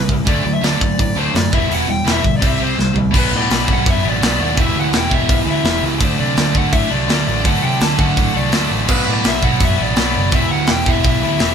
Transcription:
0.08 picked electric bass C#2, distorted electric guitar C3 G3, kick
0.25 picked electric bass D2, distorted electric guitar D3 F#3 A3 D4, kick, open hi-hat
0.29 lead electric guitar D5
0.44 picked electric bass D2, distorted electric guitar D3 F#3 A3
0.54 lead electric guitar E5
0.61 picked electric bass D2, distorted electric guitar D3 F#3 A3, lead electric guitar D5, snare, open hi-hat
0.65 distorted electric guitar D4
0.81 picked electric bass D2, distorted electric guitar D3 F#3 A3, lead electric guitar D5, kick
0.98 picked electric bass A2, distorted electric guitar D3 F#3 A3, lead electric guitar D5, kick, open hi-hat
1.15 picked electric bass D2, distorted electric guitar D3 F#3 A3 D4, lead electric guitar C5
1.34 picked electric bass F#2, distorted electric guitar D3 F#3 A3, lead electric guitar D5, snare, open hi-hat
1.52 picked electric bass E1, distorted electric guitar E2 B2 E3 G3 B3, lead electric guitar E5, kick
1.68 picked electric bass E1, distorted electric guitar E2 B2 E3 G3 B3, open hi-hat
1.74 lead electric guitar F#5
1.88 picked electric bass E1, distorted electric guitar E2 B2 E3 G3, lead electric guitar G5
2.04 picked electric bass E1, distorted electric guitar E2 B2 E3 G3 B3, snare, open hi-hat
2.11 lead electric guitar E5
2.22 picked electric bass D2, distorted electric guitar E2 B2 E3 G3, kick
2.37 lead electric guitar D5
2.41 picked electric bass C2, distorted electric guitar C3 G3 C4, kick, open hi-hat
2.47 lead electric guitar E5
2.59 picked electric bass C2, distorted electric guitar C3 G3 C4, lead electric guitar C5
2.78 picked electric bass C2, distorted electric guitar C3 G3, snare
2.93 picked electric bass C2, distorted electric guitar C3 G3, floor tom
3.10 picked electric bass B1, distorted electric guitar B2 F#3 B3 D4 F#4, kick
3.15 lead electric guitar B4, crash
3.32 picked electric bass A2
3.36 lead electric guitar D5
3.51 picked electric bass B1, snare, open hi-hat
3.65 picked electric bass B1, distorted electric guitar B2 F#3 B3 D4 F#4, kick
3.73 lead electric guitar F#5
3.86 picked electric bass F#2, lead electric guitar E5, kick, open hi-hat
4.03 picked electric bass A1, distorted electric guitar B2 F#3 B3
4.09 lead electric guitar D5
4.20 picked electric bass B1, distorted electric guitar B2 F#3 B3 D4 F#4, snare, open hi-hat
4.27 lead electric guitar D5
4.39 picked electric bass D#2
4.44 lead electric guitar D5
4.55 picked electric bass E1, distorted electric guitar E2 B2 E3 B3 E4, kick, open hi-hat
4.59 distorted electric guitar G4, lead electric guitar E5
4.75 picked electric bass D2
4.79 lead electric guitar F#5
4.93 picked electric bass E1, snare, open hi-hat
4.97 lead electric guitar G5
5.08 picked electric bass E1, distorted electric guitar E3 B3 E4 G4, kick
5.14 lead electric guitar E5
5.29 picked electric bass B1, kick, open hi-hat
5.33 lead electric guitar E5
5.45 picked electric bass D2, distorted electric guitar E2 B2 E3
5.51 lead electric guitar E5
5.62 picked electric bass E1, distorted electric guitar E2 B2 E3 B3, snare, open hi-hat
5.67 distorted electric guitar E4 G4
5.83 picked electric bass C#2
5.99 picked electric bass D2, distorted electric guitar D3 F#3 A3 D4 F#4, kick, open hi-hat
6.05 lead electric guitar C5
6.20 picked electric bass C3, lead electric guitar D5
6.37 picked electric bass D2, snare, open hi-hat
6.53 picked electric bass D2, distorted electric guitar D3 F#3 A3 D4 F#4, kick
6.57 lead electric guitar F#5
6.73 picked electric bass A2, lead electric guitar E5, kick, open hi-hat
6.90 picked electric bass C2, distorted electric guitar D3 A3 D4, lead electric guitar D5
7.06 picked electric bass D2, distorted electric guitar D3 F#3 A3 D4 F#4, snare, open hi-hat
7.27 picked electric bass A1, lead electric guitar D5
7.43 picked electric bass D2, distorted electric guitar D3 F#3 A3 D4 F#4, lead electric guitar F#5, kick, open hi-hat
7.63 picked electric bass C3, lead electric guitar G5
7.81 picked electric bass D2, lead electric guitar A5, snare, open hi-hat
7.97 picked electric bass D2, distorted electric guitar D3 F#3 A3 D4 F#4, lead electric guitar F#5, kick
8.17 picked electric bass A2, kick, open hi-hat
8.34 picked electric bass C2, distorted electric guitar D3 A3 D4, lead electric guitar D5
8.50 picked electric bass D2, distorted electric guitar D3 F#3 A3 D4 F#4, snare, open hi-hat
8.72 picked electric bass A1
8.87 picked electric bass B1, distorted electric guitar B2 F#3 B3 D4 F#4, lead electric guitar B4, kick, crash
9.08 picked electric bass A2, lead electric guitar D5
9.24 picked electric bass B1, lead electric guitar E5, snare, open hi-hat
9.40 picked electric bass B1, distorted electric guitar B2 F#3 B3 D4 F#4, kick
9.44 lead electric guitar F#5
9.60 picked electric bass F#2, kick, open hi-hat
9.64 lead electric guitar E5
9.76 picked electric bass A1, distorted electric guitar B2 F#3 B3
9.83 lead electric guitar D5
9.95 picked electric bass B1, distorted electric guitar B2 F#3 B3 D4 F#4, snare, open hi-hat
10.16 picked electric bass F#1, lead electric guitar D5
10.30 picked electric bass E1, distorted electric guitar E2 B2 E3 B3 E4 G4, kick, open hi-hat
10.35 lead electric guitar E5
10.51 picked electric bass D2, lead electric guitar F#5
10.67 picked electric bass E1, snare, open hi-hat
10.71 lead electric guitar G5
10.85 picked electric bass E1, distorted electric guitar E3 B3 E4 G4, lead electric guitar E5, kick
11.04 picked electric bass B1, lead electric guitar E5, kick, open hi-hat
11.20 picked electric bass D2, distorted electric guitar B2 E3, lead electric guitar E5
11.24 distorted electric guitar E2
11.39 picked electric bass E1, distorted electric guitar E2 B2 E3 B3 E4 G4, snare, open hi-hat

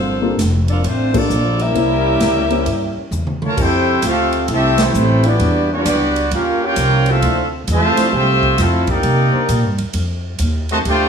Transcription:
Already playing: upright bass G1, trombone section D3 F3 C4, saxophone section A#3 F4 A4 C5
0.22 grand piano A#3 D4 F4 G4 A4
0.39 upright bass F1, kick, snare, hi-hat pedal, ride
0.68 trombone section F3 A#3 D4, saxophone section A#3 F4 A4 D5, ride
0.83 upright bass A1, saxophone section A3 D4 F4 C5, trombone section C4, kick, ride
1.13 trombone section F3 A#3 D4, grand piano A#3 D4 F4 G4 A4, saxophone section A#3 F4 A4 D5, kick, crash
1.30 upright bass A#1, hi-hat pedal
1.59 trombone section G3 A#3 E4, saxophone section C#4 G4 A#4 E5, ride
1.75 upright bass C2, grand piano A#3 C#4 E4 G4 C5, kick, ride
2.20 upright bass C#2, kick, snare, hi-hat pedal, ride
2.50 grand piano A#3 C#4 E4 G4 C5, ride
2.66 upright bass G2, kick, ride
2.96 muted upright bass stroke
3.11 upright bass E2, hi-hat pedal, mid tom
3.27 mid tom
3.41 trombone section A3, mid tom
3.46 trumpet section F4 A#4 C#5 A5
3.57 upright bass F2, trombone section C4 E4 G4, kick, crash
3.61 trumpet section E4 A4 C5 G5
4.02 upright bass D2, trombone section A3 C4 F4, kick, hi-hat pedal, ride
4.06 trumpet section C4 G4 A4 F5
4.32 ride
4.48 upright bass C2, trombone section A3 C4 E4, kick, ride
4.53 trumpet section C4 G4 A4 E5
4.78 trombone section C4, snare, ride
4.82 trombone section E3 A3, trumpet section A3 E4 G4 C5
4.93 upright bass A1, hi-hat pedal
5.23 trombone section E3 G3 B3 D4 E4, trumpet section B3 F#4 G4 D5, ride
5.40 upright bass E2, kick, ride
5.72 trombone section G3 B3 D4, trumpet section B3 F#4 G4 D5
5.83 upright bass C#2, trombone section E3 G3 D4 F#4, kick, hi-hat pedal, ride
6.16 ride
6.31 upright bass D#2, trombone section A#3 C#4 F4, trumpet section C#4 G4 A#4 F5, kick, ride
6.64 trombone section A#3 C#4 G4, trumpet section F4 A#4 C#5 G5
6.73 upright bass C2, trombone section F3 C#4 D#4 G4, kick, hi-hat pedal, ride
7.06 trumpet section C4, ride
7.10 trombone section A3 C4 F4, trumpet section A4 E5 F5
7.20 upright bass D2, trombone section F3 D4 E4 C5, kick, ride
7.67 upright bass E2, trombone section C3 F3 A3, kick, hi-hat pedal, ride
7.73 trumpet section F4 C5 E5 A5
7.95 trombone section F3 D4 E4 C5, muted upright bass stroke, snare, ride
8.13 upright bass C2, trombone section A3 C4 G4, trumpet section F4 C5 E5 G5, kick
8.43 kick
8.58 upright bass F2, trombone section A3 C4 F4, trumpet section E4, kick, snare, hi-hat pedal, ride
8.62 trumpet section C4 A4 F5
8.87 trombone section A#3 D#4 G4, trumpet section D#4 A#4, kick, ride
8.91 trumpet section D5 G5
9.03 upright bass C3, kick, ride
9.31 trombone section A#3 D4 D#4 C5, muted upright bass stroke
9.49 upright bass A#2, kick, hi-hat pedal, ride
9.64 upright bass G2
9.78 upright bass D#2, ride
9.93 upright bass F2, kick, ride
10.39 upright bass D#2, kick, hi-hat pedal, ride
10.69 trombone section C3 D#3 A3, trumpet section F#4 C5 D#5 A5, ride
10.85 upright bass D2, trombone section A3 D4 G4, trumpet section F4 C5 D5 G5, kick, ride

